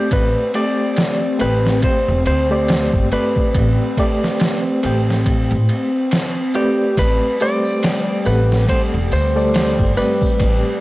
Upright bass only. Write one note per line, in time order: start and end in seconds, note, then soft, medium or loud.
0.12 0.33 A1 loud
1.41 1.79 A1 loud
2.08 2.24 E1 loud
2.27 2.89 D2 medium
2.94 3.10 G1 medium
3.55 3.76 A1 loud
4.84 5.53 A1 loud
5.51 5.67 A2 loud
6.98 7.19 A1 loud
8.27 8.65 A1 loud
8.94 9.10 E1 loud
9.12 9.75 D2 medium
9.79 9.95 G1 medium
10.40 10.62 A1 loud